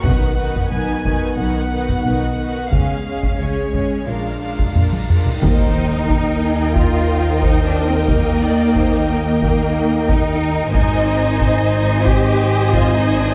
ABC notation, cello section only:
X:1
M:4/4
L:1/8
Q:1/4=90
K:A#phr
V:1 name="Cello section"
B,,2 B,,2 B,,2 B,,2 | C,2 C,2 A,,2 A,,2 | [K:Eb] E4 F2 (3E D C | B,4 B,2 E2 |
E4 G2 (3F E D |]